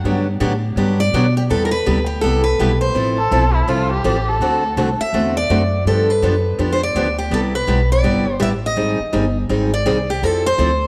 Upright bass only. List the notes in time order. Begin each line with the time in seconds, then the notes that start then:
0.04 G2
0.40 A2
0.76 G2
1.13 B2
1.50 E2
1.87 D2
2.23 C2
2.59 B1
2.95 A1
3.31 B1
3.67 C2
4.04 A1
4.40 D2
4.76 C2
5.13 E2
5.50 F#2
5.85 G2
6.22 F#2
6.58 F2
6.95 D2
7.31 C2
7.67 B1
8.03 G1
8.40 A1
8.77 G#1
8.99 muted upright bass stroke
9.13 G1
9.49 G#1
9.86 C2
10.22 F2
10.58 D2